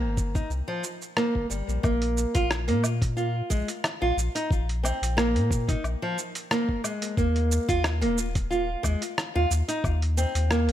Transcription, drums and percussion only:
0.17 kick loud
0.17 shaker medium
0.35 kick loud
0.35 shaker soft
0.51 shaker soft
0.84 shaker medium
1.02 shaker soft
1.17 cross-stick loud
1.17 shaker soft
1.35 kick medium
1.51 shaker medium
1.69 shaker soft
1.84 kick loud
1.84 low woodblock medium
1.84 shaker soft
2.02 closed hi-hat soft
2.17 shaker medium
2.35 kick loud
2.35 closed hi-hat medium
2.35 shaker soft
2.51 cross-stick loud
2.51 shaker soft
2.69 closed hi-hat soft
2.84 low woodblock medium
2.84 shaker medium
3.02 kick loud
3.02 closed hi-hat medium
3.02 shaker soft
3.17 shaker soft
3.50 kick medium
3.50 shaker medium
3.68 closed hi-hat medium
3.68 shaker soft
3.84 cross-stick loud
3.84 low woodblock medium
3.84 shaker soft
4.18 shaker medium
4.36 closed hi-hat medium
4.36 shaker soft
4.51 kick loud
4.51 shaker soft
4.69 closed hi-hat soft
4.85 low woodblock medium
4.85 shaker medium
5.03 closed hi-hat medium
5.03 shaker soft
5.18 cross-stick loud
5.18 shaker soft
5.36 closed hi-hat soft
5.51 kick loud
5.51 shaker medium
5.69 kick loud
5.69 closed hi-hat medium
5.69 shaker soft
5.84 low woodblock medium
5.84 shaker soft
6.18 shaker medium
6.35 closed hi-hat medium
6.35 shaker soft
6.51 cross-stick loud
6.51 shaker soft
6.69 kick medium
6.84 low woodblock medium
6.84 shaker medium
7.02 closed hi-hat medium
7.02 shaker soft
7.17 kick loud
7.17 shaker soft
7.36 closed hi-hat soft
7.52 shaker medium
7.69 kick loud
7.69 closed hi-hat medium
7.69 shaker soft
7.84 cross-stick loud
7.84 low woodblock medium
7.84 shaker soft
8.02 closed hi-hat soft
8.18 shaker medium
8.35 kick loud
8.35 closed hi-hat medium
8.35 shaker soft
8.52 shaker soft
8.84 kick medium
8.84 low woodblock medium
8.84 shaker medium
9.02 closed hi-hat medium
9.02 shaker soft
9.18 cross-stick loud
9.18 shaker soft
9.51 shaker medium
9.69 closed hi-hat soft
9.69 shaker soft
9.84 kick loud
9.84 low woodblock medium
9.84 shaker soft
10.02 closed hi-hat soft
10.18 shaker medium
10.35 closed hi-hat medium
10.35 shaker soft
10.51 cross-stick loud
10.51 shaker soft
10.69 closed hi-hat soft

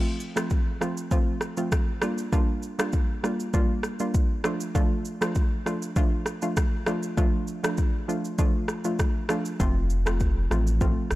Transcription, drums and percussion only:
0.20 shaker medium
0.37 cross-stick loud
0.37 shaker medium
0.50 kick medium
0.50 shaker medium
0.81 cross-stick medium
0.81 shaker medium
0.97 shaker medium
1.11 kick loud
1.11 shaker medium
1.41 cross-stick medium
1.41 shaker soft
1.57 shaker medium
1.72 kick loud
1.72 cross-stick loud
1.72 shaker medium
2.02 cross-stick loud
2.02 shaker medium
2.18 shaker medium
2.33 kick loud
2.33 shaker medium
2.63 shaker medium
2.79 cross-stick loud
2.79 shaker medium
2.92 kick medium
2.92 shaker medium
3.24 cross-stick medium
3.24 shaker medium
3.40 shaker medium
3.54 kick loud
3.54 shaker medium
3.83 cross-stick medium
3.83 shaker medium
3.99 shaker medium
4.14 kick loud
4.14 shaker medium
4.44 cross-stick loud
4.44 shaker medium
4.60 shaker medium
4.75 kick loud
4.75 shaker medium
5.05 shaker medium
5.22 cross-stick loud
5.22 shaker medium
5.35 kick medium
5.35 shaker medium
5.66 cross-stick medium
5.66 shaker medium
5.82 shaker medium
5.96 kick loud
5.96 shaker medium
6.26 cross-stick medium
6.26 shaker medium
6.42 shaker medium
6.57 kick loud
6.57 cross-stick loud
6.57 shaker medium
6.86 cross-stick loud
6.86 shaker medium
7.03 shaker medium
7.17 kick loud
7.17 shaker medium
7.47 shaker medium
7.64 cross-stick loud
7.64 shaker medium
7.77 kick medium
7.77 shaker medium
8.09 shaker medium
8.25 shaker medium
8.38 kick loud
8.38 shaker medium
8.68 cross-stick medium
8.68 shaker soft
8.84 shaker medium
8.99 kick medium
8.99 cross-stick medium
8.99 shaker medium
9.29 cross-stick loud
9.29 shaker medium
9.45 shaker medium
9.60 kick loud
9.60 shaker medium
9.90 shaker medium
10.06 cross-stick loud
10.06 shaker medium
10.20 kick medium
10.20 shaker medium
10.51 cross-stick medium
10.51 shaker medium
10.67 shaker medium
10.81 kick loud
10.81 shaker medium
11.11 cross-stick medium
11.11 shaker medium

